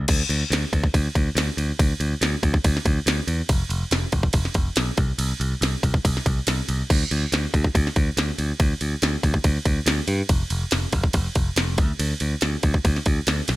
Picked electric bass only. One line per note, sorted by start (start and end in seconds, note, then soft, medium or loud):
0.08 0.22 D2 loud
0.29 0.43 D2 medium
0.50 0.64 D2 medium
0.73 0.86 D2 medium
0.94 1.07 D2 loud
1.15 1.29 D2 medium
1.35 1.49 D2 medium
1.57 1.71 D2 medium
1.79 1.92 D2 loud
2.00 2.13 D2 medium
2.21 2.35 D2 medium
2.43 2.56 D2 medium
2.64 2.78 D2 loud
2.85 2.99 D2 medium
3.06 3.20 D2 medium
3.27 3.41 E2 medium
3.49 3.62 F1 medium
3.69 3.83 F1 medium
3.91 4.05 F1 loud
4.12 4.26 F1 medium
4.34 4.47 F1 loud
4.55 4.68 F1 medium
4.77 4.90 B1 medium
4.98 5.11 C2 medium
5.18 5.32 C2 loud
5.40 5.53 C2 medium
5.61 5.75 C2 medium
5.83 5.96 C2 medium
6.05 6.18 C2 loud
6.26 6.39 C2 medium
6.47 6.60 C2 medium
6.69 6.82 C2 medium
6.90 7.03 D2 loud
7.11 7.24 D2 medium
7.32 7.45 D2 medium
7.54 7.67 D2 loud
7.75 7.88 D2 medium
7.96 8.09 D2 medium
8.17 8.30 D2 medium
8.38 8.51 D2 medium
8.60 8.73 D2 medium
8.81 8.94 D2 medium
9.02 9.15 D2 loud
9.23 9.36 D2 medium
9.44 9.57 D2 loud
9.66 9.79 D2 medium
9.86 9.99 D2 medium
10.08 10.21 G2 medium
10.29 10.43 F1 medium
10.51 10.64 F1 loud
10.72 10.85 F1 medium
10.93 11.06 F1 loud
11.14 11.27 F1 loud
11.36 11.49 F1 medium
11.56 11.79 F1 medium
11.78 11.91 D2 medium
11.99 12.13 D2 loud
12.21 12.34 D2 medium
12.42 12.55 D2 medium
12.63 12.76 D2 medium
12.85 12.98 D2 medium
13.06 13.19 D2 medium
13.27 13.40 D2 medium
13.49 13.56 B1 medium